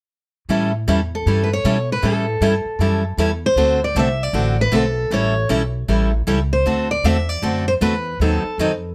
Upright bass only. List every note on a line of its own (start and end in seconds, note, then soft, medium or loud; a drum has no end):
0.49 0.86 A2 medium
0.88 1.25 E2 medium
1.26 1.63 G2 medium
1.64 2.02 B2 medium
2.03 2.40 A2 medium
2.41 2.64 G2 medium
2.65 muted upright bass stroke soft
2.79 3.17 F#2 medium
3.17 3.55 E2 medium
3.56 3.94 D2 medium
3.95 4.33 C2 medium
4.33 4.71 A1 medium
4.72 5.10 B1 medium
5.11 5.48 A1 medium
5.50 5.87 B1 medium
5.88 6.26 A1 medium
6.27 6.65 C#2 medium
6.65 7.03 D2 medium
7.04 7.41 E2 medium
7.42 7.80 F#2 medium
7.81 8.19 E2 medium
8.20 8.42 D#2 medium
8.58 8.95 F2 medium